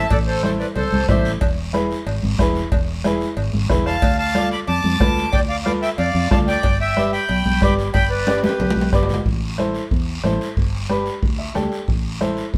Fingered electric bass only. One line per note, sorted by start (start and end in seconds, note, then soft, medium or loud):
0.11 0.63 A1 loud
0.76 0.89 C2 medium
0.92 1.05 C2 medium
1.09 1.35 A1 loud
1.41 1.94 E1 medium
2.06 2.20 G#1 medium
2.23 2.36 G#1 loud
2.39 2.65 E1 loud
2.72 3.24 E1 loud
3.37 3.50 G#1 medium
3.53 3.66 G#1 medium
3.70 3.96 E1 loud
4.02 4.54 D2 loud
4.68 4.81 F2 medium
4.84 4.97 F2 medium
5.00 5.26 D2 loud
5.33 5.85 D2 medium
5.98 6.11 F2 medium
6.15 6.28 F2 loud
6.31 6.57 D2 loud
6.64 7.16 G1 medium
7.29 7.42 B1 medium
7.46 7.59 B1 medium
7.62 7.88 G1 loud
7.94 8.47 G1 medium
8.60 8.73 B1 medium
8.76 8.89 B1 medium
8.93 9.19 G1 loud
9.25 9.78 A1 medium
9.91 10.17 E2 medium
10.24 10.37 A1 medium
10.57 11.09 G1 medium
11.22 11.49 D2 medium
11.56 11.69 D2 medium
11.88 12.41 A1 medium
12.54 12.58 E2 medium